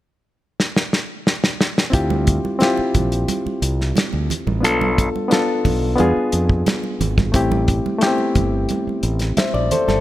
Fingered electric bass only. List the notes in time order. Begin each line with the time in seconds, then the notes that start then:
1.94 D2
2.79 muted fingered electric bass stroke
2.95 A#1
3.46 muted fingered electric bass stroke
3.62 C2
4.13 D2
4.47 A1
4.64 B1
5.65 B1
6.00 E2
6.17 muted fingered electric bass stroke
6.33 F2
7.00 G#1
7.34 A1
8.36 G1
8.87 muted fingered electric bass stroke
9.03 A1
9.38 muted fingered electric bass stroke
9.54 A#1
9.88 G1